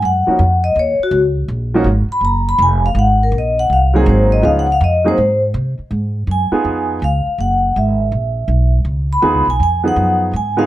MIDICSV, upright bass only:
0, 0, Header, 1, 3, 480
1, 0, Start_track
1, 0, Tempo, 368324
1, 29, Time_signature, 4, 2, 24, 8
1, 13895, End_track
2, 0, Start_track
2, 0, Title_t, "Upright bass"
2, 0, Program_c, 0, 32
2, 29, Note_on_c, 0, 42, 86
2, 321, Note_off_c, 0, 42, 0
2, 507, Note_on_c, 0, 41, 87
2, 971, Note_off_c, 0, 41, 0
2, 984, Note_on_c, 0, 39, 79
2, 1278, Note_off_c, 0, 39, 0
2, 1447, Note_on_c, 0, 37, 89
2, 1920, Note_off_c, 0, 37, 0
2, 1933, Note_on_c, 0, 34, 82
2, 2393, Note_off_c, 0, 34, 0
2, 2401, Note_on_c, 0, 32, 85
2, 2704, Note_off_c, 0, 32, 0
2, 2878, Note_on_c, 0, 30, 77
2, 3354, Note_off_c, 0, 30, 0
2, 3368, Note_on_c, 0, 29, 96
2, 3832, Note_off_c, 0, 29, 0
2, 3840, Note_on_c, 0, 32, 88
2, 4315, Note_off_c, 0, 32, 0
2, 4324, Note_on_c, 0, 34, 89
2, 4796, Note_off_c, 0, 34, 0
2, 4817, Note_on_c, 0, 36, 81
2, 5283, Note_off_c, 0, 36, 0
2, 5292, Note_on_c, 0, 32, 99
2, 5760, Note_off_c, 0, 32, 0
2, 5776, Note_on_c, 0, 37, 86
2, 6242, Note_off_c, 0, 37, 0
2, 6263, Note_on_c, 0, 41, 91
2, 6725, Note_off_c, 0, 41, 0
2, 6747, Note_on_c, 0, 44, 80
2, 7208, Note_off_c, 0, 44, 0
2, 7221, Note_on_c, 0, 48, 92
2, 7512, Note_off_c, 0, 48, 0
2, 7697, Note_on_c, 0, 44, 80
2, 8163, Note_off_c, 0, 44, 0
2, 8173, Note_on_c, 0, 42, 83
2, 8469, Note_off_c, 0, 42, 0
2, 8659, Note_on_c, 0, 41, 74
2, 9124, Note_off_c, 0, 41, 0
2, 9147, Note_on_c, 0, 37, 87
2, 9437, Note_off_c, 0, 37, 0
2, 9622, Note_on_c, 0, 30, 79
2, 10087, Note_off_c, 0, 30, 0
2, 10114, Note_on_c, 0, 32, 83
2, 10574, Note_off_c, 0, 32, 0
2, 10580, Note_on_c, 0, 34, 78
2, 11041, Note_off_c, 0, 34, 0
2, 11048, Note_on_c, 0, 35, 85
2, 11521, Note_off_c, 0, 35, 0
2, 11529, Note_on_c, 0, 37, 78
2, 12002, Note_off_c, 0, 37, 0
2, 12019, Note_on_c, 0, 39, 89
2, 12171, Note_off_c, 0, 39, 0
2, 12171, Note_on_c, 0, 37, 50
2, 12338, Note_off_c, 0, 37, 0
2, 12344, Note_on_c, 0, 35, 64
2, 12493, Note_off_c, 0, 35, 0
2, 12505, Note_on_c, 0, 41, 77
2, 12972, Note_off_c, 0, 41, 0
2, 12983, Note_on_c, 0, 42, 87
2, 13451, Note_off_c, 0, 42, 0
2, 13467, Note_on_c, 0, 44, 82
2, 13895, Note_off_c, 0, 44, 0
2, 13895, End_track
3, 0, Start_track
3, 0, Title_t, "Muted upright bass strokes"
3, 356, Note_on_c, 9, 29, 36
3, 487, Note_off_c, 9, 29, 0
3, 1291, Note_on_c, 9, 29, 38
3, 1421, Note_off_c, 9, 29, 0
3, 2715, Note_on_c, 9, 29, 38
3, 2846, Note_off_c, 9, 29, 0
3, 7540, Note_on_c, 9, 29, 37
3, 7671, Note_off_c, 9, 29, 0
3, 8490, Note_on_c, 9, 29, 39
3, 8621, Note_off_c, 9, 29, 0
3, 9466, Note_on_c, 9, 29, 37
3, 9597, Note_off_c, 9, 29, 0
3, 13895, End_track
0, 0, End_of_file